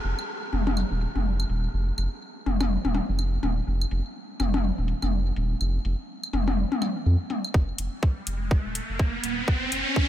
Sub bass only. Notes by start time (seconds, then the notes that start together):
0.04 F1
0.53 F1
0.91 D#1
1.15 F1
1.49 D#1
1.74 F1
1.98 F1
2.46 F1
2.85 D#1
3.09 F1
3.43 D#1
3.67 F1
3.91 F1
4.40 F1
4.78 D#1
5.03 F1
5.37 D#1
5.61 F1
5.85 F1
6.33 F1
7.06 F2
7.54 F1
7.79 F1
8.27 F1
8.65 D#1
8.89 F1
9.24 D#1
9.48 F1
9.72 F1